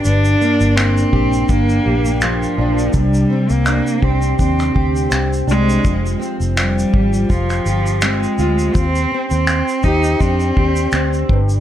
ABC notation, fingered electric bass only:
X:1
M:4/4
L:1/16
Q:"Swing 16ths" 1/4=83
K:Cm
V:1 name="Fingered electric bass" clef=bass
G,,,2 z G,,,3 B,,,2 G,,,2 B,,,4 B,,,2 | C,,2 z C,,2 z C,,2 E,,2 D,,2 C,,2 C,,2 | F,,,2 z F,,,3 A,,,2 F,,,2 G,,,4 D,,2 | E,,2 z E,,2 z E,,2 F,,2 E,,2 D,,2 G,,,2 |]